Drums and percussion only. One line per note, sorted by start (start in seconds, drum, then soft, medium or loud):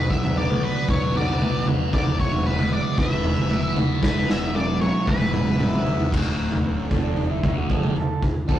0.10 kick medium
0.23 floor tom medium
0.37 floor tom medium
0.50 mid tom medium
0.89 kick loud
0.89 floor tom medium
1.15 floor tom medium
1.28 floor tom medium
1.42 mid tom medium
1.68 floor tom medium
1.68 mid tom medium
1.93 kick loud
1.93 floor tom medium
2.07 floor tom medium
2.19 kick medium
2.33 floor tom medium
2.46 floor tom medium
2.59 mid tom medium
2.98 kick loud
2.98 floor tom medium
3.24 floor tom medium
3.37 floor tom medium
3.50 mid tom medium
3.77 floor tom medium
3.77 mid tom medium
4.03 kick loud
4.03 snare medium
4.30 snare medium
4.55 high tom medium
4.82 high tom medium
5.07 kick medium
5.07 mid tom medium
5.21 mid tom medium
5.34 mid tom medium
5.47 mid tom medium
5.60 mid tom loud
5.74 floor tom medium
5.87 floor tom medium
6.00 floor tom medium
6.12 kick loud
6.12 floor tom medium
6.12 crash loud
6.52 floor tom medium
6.91 kick medium
6.91 floor tom medium
7.17 floor tom medium
7.43 kick loud
7.43 floor tom medium
7.43 mid tom medium
7.70 kick medium
7.83 mid tom medium
7.96 floor tom medium
8.22 kick loud
8.22 floor tom medium
8.49 kick loud